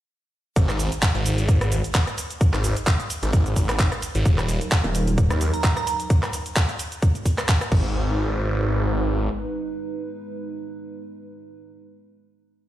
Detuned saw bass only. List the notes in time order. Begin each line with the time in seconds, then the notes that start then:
0.56 G#1
1.15 G#1
1.61 G#1
2.53 G#1
3.23 G#1
3.56 G#1
4.15 G#1
4.25 D#1
5.30 D#2
7.72 G#1